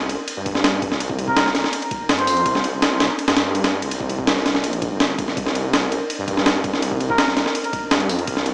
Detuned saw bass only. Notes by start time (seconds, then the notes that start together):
Already playing: C2
0.37 G2
0.92 C2
1.01 C2
2.10 G2
2.28 F2
2.46 C2
3.28 G2
3.83 C2
3.91 C2
4.64 A#1
4.92 G1
5.37 C2
6.19 G2
6.73 C2
6.83 C2
7.92 G2
8.10 F2
8.28 C2